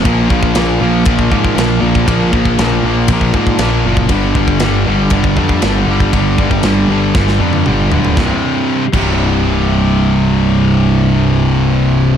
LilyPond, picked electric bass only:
\new Staff \with { instrumentName = "Picked electric bass" } { \clef bass \time 4/4 \key bes \mixolydian \tempo 4 = 118 bes,,8 bes,,8 bes,,8 bes,,8 bes,,8 aes,8 bes,,8 bes,,8 | bes,,8 bes,,8 bes,,8 bes,,8 bes,,8 aes,8 bes,,8 fis,,8 | g,,8 g,,8 g,,8 g,,8 g,,8 f,8 g,,8 g,,8 | g,,8 g,,8 g,,8 g,,8 g,,8 f,8 g,,8 d,,8 |
c,,8 r4 c,,2~ c,,8~ | c,,1 | }